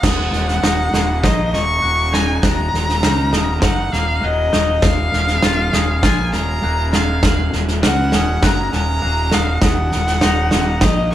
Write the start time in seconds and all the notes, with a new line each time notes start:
0.03 D#1 D#2 F#5 D#6, kick, snare, crash
0.33 D#1, snare
0.49 snare
0.63 D#1 D#4 D#6, snare
0.93 D#1 A#3 C#6, snare
1.23 A#1 D#4 D#5 D#6, kick, snare
1.53 D#1 A#3 C#6, snare
1.82 D#1 F#3 F#6
2.12 D#4 G#5 G#6, snare
2.42 D#1 D#2 A#5 F#6, kick, snare
2.74 D#1, snare
2.89 snare
3.03 C#2 D#4 F6, snare
3.33 D#1 A#3 D#6, snare
3.62 F#1 D#4 F#5 F#7, kick, snare
3.92 D#1 A#3 F5, snare
4.23 D#1 F#3 D#5 F#6
4.53 D#1 D#4 D#6, snare
4.82 D#1 A#2 F5 F6, kick, snare
5.13 D#1, snare
5.28 snare
5.43 D#1 F4 F6, snare
5.73 D#1 C#4 D#6, snare
6.03 A#1 F4 G#5 F6, kick, snare
6.33 D#1 C#4 A#5, snare
6.63 D#1 A#3 F#6
6.93 F4 F5 G#6, snare
7.22 D#1 F#2 F#7, kick, snare
7.53 D#1, snare
7.68 snare
7.82 C#2 F#4 F#5 F6, snare
8.12 D#1 C#4 D#6, snare
8.42 F#1 F#4 A#5 F#6, kick, snare
8.72 D#1 C#4 A#5, snare
9.02 D#1 A#3 F#6
9.31 D#1 F#4 F5 D#6, snare
9.62 D#1 D#2 F#5 D#6, kick, snare
9.92 D#1, snare
10.07 snare
10.21 D#1 D#4 D#6, snare
10.51 D#1 A#3 C#6, snare
10.81 A#1 D#4 D#5 D#6, kick, snare